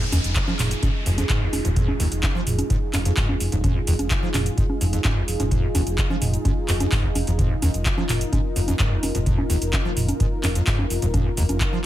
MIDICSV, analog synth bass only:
0, 0, Header, 1, 2, 480
1, 0, Start_track
1, 0, Key_signature, -4, "minor"
1, 0, Tempo, 468750
1, 1805, Time_signature, 4, 2, 24, 8
1, 12142, End_track
2, 0, Start_track
2, 0, Title_t, "Analog synth bass"
2, 0, Program_c, 0, 38
2, 126, Note_on_c, 0, 29, 96
2, 202, Note_off_c, 0, 29, 0
2, 248, Note_on_c, 0, 29, 79
2, 397, Note_off_c, 0, 29, 0
2, 606, Note_on_c, 0, 29, 97
2, 758, Note_off_c, 0, 29, 0
2, 1087, Note_on_c, 0, 29, 98
2, 1238, Note_off_c, 0, 29, 0
2, 1567, Note_on_c, 0, 29, 93
2, 1642, Note_off_c, 0, 29, 0
2, 1688, Note_on_c, 0, 27, 105
2, 1837, Note_off_c, 0, 27, 0
2, 2046, Note_on_c, 0, 29, 97
2, 2122, Note_off_c, 0, 29, 0
2, 2168, Note_on_c, 0, 29, 82
2, 2317, Note_off_c, 0, 29, 0
2, 2526, Note_on_c, 0, 29, 90
2, 2677, Note_off_c, 0, 29, 0
2, 3007, Note_on_c, 0, 29, 100
2, 3158, Note_off_c, 0, 29, 0
2, 3486, Note_on_c, 0, 29, 92
2, 3562, Note_off_c, 0, 29, 0
2, 3607, Note_on_c, 0, 27, 106
2, 3757, Note_off_c, 0, 27, 0
2, 3966, Note_on_c, 0, 29, 99
2, 4042, Note_off_c, 0, 29, 0
2, 4087, Note_on_c, 0, 29, 78
2, 4236, Note_off_c, 0, 29, 0
2, 4445, Note_on_c, 0, 29, 92
2, 4597, Note_off_c, 0, 29, 0
2, 4925, Note_on_c, 0, 29, 94
2, 5077, Note_off_c, 0, 29, 0
2, 5406, Note_on_c, 0, 29, 93
2, 5482, Note_off_c, 0, 29, 0
2, 5526, Note_on_c, 0, 27, 111
2, 5676, Note_off_c, 0, 27, 0
2, 5886, Note_on_c, 0, 29, 102
2, 5962, Note_off_c, 0, 29, 0
2, 6007, Note_on_c, 0, 29, 83
2, 6156, Note_off_c, 0, 29, 0
2, 6366, Note_on_c, 0, 29, 93
2, 6517, Note_off_c, 0, 29, 0
2, 6845, Note_on_c, 0, 29, 89
2, 6997, Note_off_c, 0, 29, 0
2, 7325, Note_on_c, 0, 29, 97
2, 7401, Note_off_c, 0, 29, 0
2, 7447, Note_on_c, 0, 29, 90
2, 7596, Note_off_c, 0, 29, 0
2, 7805, Note_on_c, 0, 29, 97
2, 7882, Note_off_c, 0, 29, 0
2, 7926, Note_on_c, 0, 29, 87
2, 8076, Note_off_c, 0, 29, 0
2, 8285, Note_on_c, 0, 29, 91
2, 8437, Note_off_c, 0, 29, 0
2, 8766, Note_on_c, 0, 29, 94
2, 8917, Note_off_c, 0, 29, 0
2, 9245, Note_on_c, 0, 29, 90
2, 9322, Note_off_c, 0, 29, 0
2, 9367, Note_on_c, 0, 27, 105
2, 9516, Note_off_c, 0, 27, 0
2, 9725, Note_on_c, 0, 29, 96
2, 9801, Note_off_c, 0, 29, 0
2, 9847, Note_on_c, 0, 29, 78
2, 9996, Note_off_c, 0, 29, 0
2, 10205, Note_on_c, 0, 29, 91
2, 10357, Note_off_c, 0, 29, 0
2, 10686, Note_on_c, 0, 29, 95
2, 10837, Note_off_c, 0, 29, 0
2, 11166, Note_on_c, 0, 29, 95
2, 11242, Note_off_c, 0, 29, 0
2, 11287, Note_on_c, 0, 27, 109
2, 11437, Note_off_c, 0, 27, 0
2, 11646, Note_on_c, 0, 29, 96
2, 11722, Note_off_c, 0, 29, 0
2, 11767, Note_on_c, 0, 29, 85
2, 11916, Note_off_c, 0, 29, 0
2, 12142, End_track
0, 0, End_of_file